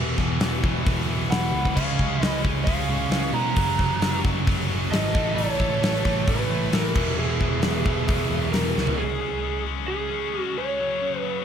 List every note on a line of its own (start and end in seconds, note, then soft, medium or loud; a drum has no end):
0.00 0.15 E1 medium
0.00 0.16 E2 medium
0.00 0.61 E2 loud
0.00 0.18 B2 loud
0.00 0.62 B2 loud
0.00 0.17 E3 loud
0.00 0.61 E3 loud
0.17 0.39 E1 loud
0.17 0.39 E2 medium
0.17 0.39 B2 medium
0.17 0.39 E3 medium
0.17 kick medium
0.17 snare soft
0.39 0.61 E1 medium
0.39 0.61 E2 medium
0.39 0.61 B2 medium
0.39 0.62 E3 medium
0.39 snare loud
0.39 open hi-hat medium
0.62 0.85 E1 medium
0.62 0.83 E2 medium
0.62 0.83 B2 medium
0.62 0.84 E3 loud
0.62 kick loud
0.84 1.07 E1 loud
0.84 1.06 E2 medium
0.84 1.07 B2 medium
0.84 1.07 E3 loud
0.84 kick loud
0.84 open hi-hat medium
1.07 1.29 E1 medium
1.07 1.29 E2 medium
1.07 1.29 B2 medium
1.07 1.30 E3 medium
1.30 1.51 E1 medium
1.30 1.51 E2 medium
1.30 1.51 B2 loud
1.30 1.52 E3 medium
1.30 1.73 B4 medium
1.30 1.73 F#5 medium
1.30 snare loud
1.30 open hi-hat medium
1.52 1.74 C#2 medium
1.52 1.74 E2 medium
1.52 1.74 B2 medium
1.52 1.74 E3 loud
1.65 kick medium
1.74 1.98 C#2 medium
1.74 1.97 C#3 loud
1.74 1.97 G#3 loud
1.74 1.99 C#4 loud
1.74 2.23 C#5 medium
1.74 2.24 F5 loud
1.74 kick medium
1.74 crash loud
1.98 2.19 C#2 medium
1.98 2.19 C#3 medium
1.98 2.20 G#3 medium
1.98 2.21 C#4 medium
1.98 kick medium
2.20 2.42 C#2 medium
2.20 2.42 C#3 medium
2.20 2.42 G#3 medium
2.20 2.44 C#4 medium
2.20 2.39 B4 medium
2.20 snare loud
2.20 open hi-hat medium
2.24 2.40 D#5 loud
2.43 2.65 C#2 medium
2.43 2.66 C#3 medium
2.43 2.66 G#3 medium
2.43 2.67 C#4 loud
2.43 kick loud
2.65 2.87 C#2 loud
2.65 2.88 C#3 loud
2.65 2.89 G#3 loud
2.65 2.90 C#4 loud
2.65 3.30 C#5 medium
2.65 3.35 F5 medium
2.65 kick loud
2.65 open hi-hat medium
2.88 3.08 C#2 medium
2.88 3.12 C#3 medium
2.88 3.12 G#3 medium
2.88 3.13 C#4 medium
3.09 3.31 C#2 medium
3.09 snare loud
3.09 open hi-hat medium
3.13 3.33 C#3 medium
3.13 3.33 G#3 medium
3.13 3.35 C#4 loud
3.33 3.54 B2 medium
3.33 3.55 C#3 medium
3.33 3.55 G#3 medium
3.33 5.14 C#4 medium
3.33 4.20 F#5 loud
3.33 4.20 A#5 loud
3.56 3.78 F#1 medium
3.56 3.78 F#2 medium
3.56 3.78 C#3 loud
3.56 3.79 F#3 loud
3.56 kick loud
3.56 open hi-hat medium
3.79 3.99 F#1 medium
3.79 4.00 F#2 medium
3.79 4.00 C#3 medium
3.79 4.01 F#3 medium
3.79 kick medium
3.79 snare soft
4.00 4.22 F#1 medium
4.00 4.22 F#2 medium
4.00 4.23 C#3 medium
4.00 4.23 F#3 loud
4.00 snare loud
4.00 open hi-hat medium
4.23 4.46 F#1 loud
4.23 4.46 F#2 medium
4.23 4.46 C#3 loud
4.23 4.46 F#3 loud
4.23 kick loud
4.23 snare soft
4.47 4.68 F#1 loud
4.47 4.67 F#2 medium
4.47 4.67 C#3 medium
4.47 4.68 F#3 loud
4.47 kick loud
4.47 open hi-hat medium
4.68 4.90 F#1 medium
4.68 4.91 F#2 medium
4.68 4.91 C#3 medium
4.68 4.91 F#3 medium
4.90 5.13 G#1 medium
4.90 5.13 F#2 medium
4.90 5.13 C#3 loud
4.90 5.13 F#3 loud
4.90 5.33 A4 medium
4.90 5.35 D#5 loud
4.90 snare loud
4.90 open hi-hat medium
5.13 5.36 A1 medium
5.13 5.36 A2 loud
5.13 5.36 E3 loud
5.13 5.37 A3 loud
5.13 kick loud
5.35 5.58 A1 medium
5.35 5.57 A2 loud
5.35 5.59 E3 loud
5.35 5.58 A3 loud
5.35 6.22 A4 medium
5.35 6.29 C#5 loud
5.35 open hi-hat medium
5.58 5.81 A1 medium
5.58 5.80 A2 medium
5.58 5.81 E3 medium
5.58 5.80 A3 loud
5.58 kick medium
5.81 6.03 A1 medium
5.81 6.02 A2 medium
5.81 6.04 E3 medium
5.81 6.04 A3 medium
5.81 snare loud
5.81 open hi-hat medium
6.03 6.26 A1 medium
6.03 6.25 A2 medium
6.03 6.26 E3 medium
6.03 6.27 A3 medium
6.03 kick medium
6.03 snare soft
6.27 6.49 A1 loud
6.27 6.48 A2 loud
6.27 6.48 E3 loud
6.27 6.49 A3 loud
6.27 6.70 E4 medium
6.27 6.75 B4 medium
6.27 kick loud
6.27 open hi-hat medium
6.49 6.71 A1 loud
6.49 6.71 A2 medium
6.49 6.71 E3 medium
6.49 6.71 A3 medium
6.72 6.94 A1 medium
6.72 6.94 A2 medium
6.72 6.94 E3 loud
6.72 6.94 A3 loud
6.72 7.14 E4 medium
6.72 7.18 A#4 medium
6.72 snare loud
6.72 open hi-hat medium
6.94 7.16 E1 medium
6.94 7.16 E2 loud
6.94 7.16 B2 medium
6.94 7.17 E3 loud
6.94 kick loud
6.94 crash loud
7.17 7.39 E1 medium
7.17 7.40 E2 medium
7.17 7.40 B2 loud
7.17 7.41 E3 loud
7.17 8.50 E4 medium
7.17 8.50 G#4 medium
7.41 7.62 E1 medium
7.41 7.61 E2 medium
7.41 7.61 B2 medium
7.41 7.62 E3 medium
7.41 kick medium
7.62 7.84 E1 medium
7.62 7.84 E2 medium
7.62 7.85 B2 medium
7.62 7.86 E3 medium
7.62 snare loud
7.62 open hi-hat medium
7.67 7.87 E3 medium
7.86 8.07 E1 medium
7.86 8.07 E2 medium
7.86 8.07 B2 medium
7.86 8.07 E3 loud
7.86 kick loud
8.08 8.29 E1 loud
8.08 8.30 E2 medium
8.08 8.30 B2 loud
8.08 8.31 E3 loud
8.08 kick loud
8.08 open hi-hat medium
8.29 8.51 E1 medium
8.29 8.53 E2 medium
8.29 8.53 B2 medium
8.29 8.54 E3 loud
8.52 8.75 E1 medium
8.52 8.74 E2 medium
8.52 8.75 B2 medium
8.52 8.76 E3 medium
8.52 8.97 A#4 loud
8.52 snare loud
8.52 open hi-hat medium
8.75 8.98 C#2 medium
8.75 8.97 E2 medium
8.75 8.97 B2 medium
8.75 8.98 E3 medium
8.75 snare medium
8.87 floor tom medium
8.98 9.19 C#3 loud
8.98 9.20 G#3 loud
8.98 9.20 C#4 loud
8.98 9.62 G#4 loud
9.21 9.43 C#3 medium
9.21 9.44 G#3 medium
9.21 9.44 C#4 medium
9.44 9.66 C#3 medium
9.44 9.66 G#3 medium
9.44 9.67 C#4 medium
9.67 9.88 C#3 medium
9.67 9.89 G#3 loud
9.67 9.90 C#4 loud
9.88 10.10 C#3 loud
9.88 10.10 G#3 loud
9.88 10.11 C#4 loud
9.88 10.41 G#4 medium
10.11 10.33 C#3 medium
10.11 10.33 G#3 medium
10.11 10.33 C#4 loud
10.34 10.57 C#3 medium
10.34 10.57 G#3 loud
10.34 10.58 C#4 loud
10.41 10.59 F#4 medium
10.58 10.79 C#3 medium
10.58 10.79 G#3 loud
10.58 11.45 C#4 loud
10.58 11.20 C#5 loud
10.80 11.01 F#2 medium
10.80 11.01 C#3 loud
10.80 11.02 F#3 loud
11.02 11.23 F#2 medium
11.02 11.23 C#3 medium
11.02 11.24 F#3 loud
11.20 11.44 B4 loud
11.24 11.45 F#2 medium
11.24 11.45 C#3 medium
11.24 11.45 F#3 medium